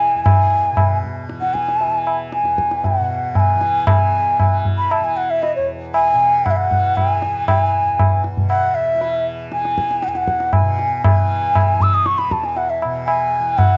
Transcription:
Already playing: E2 B2 E3 G#5
0.15 E2
0.24 G#5, tabla na, tabla ge
0.72 B2
0.77 tabla na, tabla ge
1.03 tabla ge
1.29 E3, tabla te
1.41 F#5, tabla te
1.54 G#5, tabla ke
1.68 tabla te
1.81 tabla tin
1.86 E3
2.07 tabla na
2.32 G#5, tabla te
2.42 E2, tabla te
2.58 tabla ke
2.71 tabla te
2.84 F#5, tabla tin, tabla ge
2.99 B2
3.35 A5, tabla na, tabla ge
3.40 G#5
3.55 E3
3.61 tabla te
3.87 A5, tabla na, tabla ge
3.93 G#5
4.40 tabla na, tabla ge
4.45 E3
4.65 tabla ge
4.78 B5
4.91 A5, tabla na
5.01 E3 G#5
5.17 F#5
5.30 E5
5.42 D#5, tabla tin
5.56 E2 C#5
5.94 G#5, tabla na
6.13 B2
6.45 F#5, tabla na, tabla ge
6.51 E5
6.57 F#5
6.70 E3, tabla ge
6.96 G#5, tabla na, tabla ge
7.22 E3, tabla te
7.48 G#5, tabla na, tabla ge
7.82 E2
7.99 tabla na, tabla ge
8.24 tabla te
8.37 B2, tabla ge
8.49 F#5, tabla na
8.75 E5
8.94 E3
9.01 tabla tin
9.51 E3 G#5, tabla te
9.65 tabla te
9.78 tabla ke
9.91 tabla te
10.02 F#5, tabla te
10.07 E2 G#5
10.15 F#5, tabla te
10.28 tabla ke
10.40 tabla te
10.53 G#5, tabla na, tabla ge
10.61 B2
10.79 tabla te
11.04 G#5, tabla na, tabla ge
11.17 E3
11.55 tabla na, tabla ge
11.74 E3
11.80 E6, tabla ge
11.94 D#6
12.06 C#6, tabla te
12.18 B5, tabla te
12.27 E2, tabla ke
12.32 A5
12.44 G#5, tabla te
12.56 F#5, tabla tin
12.70 E5
12.82 B2, tabla na
13.06 G#5, tabla na
13.40 E3
13.57 F#5, tabla na, tabla ge

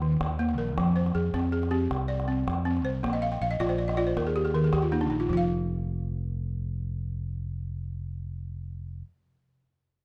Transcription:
Already playing: D#2
0.02 D#3, calabash click
0.20 D#2, calabash thump, calabash click
0.39 A#3
0.49 calabash click
0.58 A#1 A#4
0.77 F2 F3, calabash thump, calabash click
0.96 C5
1.06 calabash click
1.15 F2 G#4
1.34 F2 C4, calabash thump, calabash click
1.52 G#4
1.63 calabash click
1.71 C4 G4
1.91 C2, calabash thump, calabash click
2.08 D5
2.20 calabash click
2.28 C4, calabash click
2.47 F2, calabash thump, calabash click
2.65 C4
2.77 calabash click
2.85 C2 C5
3.03 A#1 A#3, calabash thump, calabash click
3.13 D#5, calabash click
3.22 F5, calabash click
3.32 G5, calabash click
3.41 A#1 F5
3.51 D#5
3.60 A#1 F4 D5, calabash thump, calabash click
3.69 C5, calabash click
3.78 D5
3.88 D#5, calabash click
3.97 F4 D5, calabash click
4.07 C5
4.16 D#2 A#4, calabash thump, calabash click
4.27 G#4
4.36 G4
4.45 G#4, calabash click
4.54 D#3 A#4
4.64 G#4, calabash click
4.73 D#2 G4, calabash thump, calabash click
4.82 F4
4.92 A#3 D#4
5.01 D4, calabash click
5.10 A#1 D#4
5.20 F4, calabash click
5.29 F1 F3 F4, calabash thump
5.37 F5

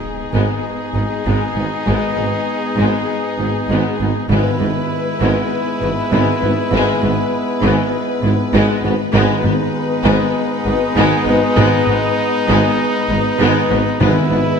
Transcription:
Already playing: G#3 B3 D#4 G#4, impact
0.32 G#1 G#2 G#3 B3
0.94 G#1 G#2 B3 D#4
1.25 G#1 G#2 G#3 B3
1.56 G#1 G#2 B3
1.86 G#1 G#2 G#3 B3
2.17 G#1 G#2 B3
2.76 G#1 G#2 G#3 B3
3.38 G#1 G#2 B3 D#4
3.69 G#1 G#2 G#3 B3
4.00 G#1 G#2 B3
4.29 G#1 G#2 G#3 B3 E4 B4
4.60 G#1 G#2 B3
5.21 G#1 G#2 G#3 B3
5.81 G#1 G#2 B3 E4
6.11 G#1 G#2 G#3 B3
6.42 G#1 G#2 B3
6.72 G#1 G#2 G#3 B3
7.02 G#1 G#2 B3
7.63 G#1 G#2 G#3 B3
8.23 G#1 G#2 B3 E4
8.53 G#1 G#2 G#3 B3
8.83 G#1 G#2 B3
9.13 G#1 G#2 G#3 B3 D#4 B4
9.44 G#1 G#2 B3
10.04 G#1 G#2 G#3 B3
10.65 G#1 G#2 B3 D#4
10.95 G#1 G#2 G#3 B3
11.26 G#1 G#2 B3
11.56 G#1 G#2 G#3 B3
11.87 G#1 G#2 B3
12.48 G#1 G#2 G#3 B3
13.09 G#1 G#2 B3 D#4
13.40 G#1 G#2 G#3 B3
13.70 G#1 G#2 B3
14.00 G#1 G#2 G#3 B3 E4 B4
14.31 G#1 G#2 B3

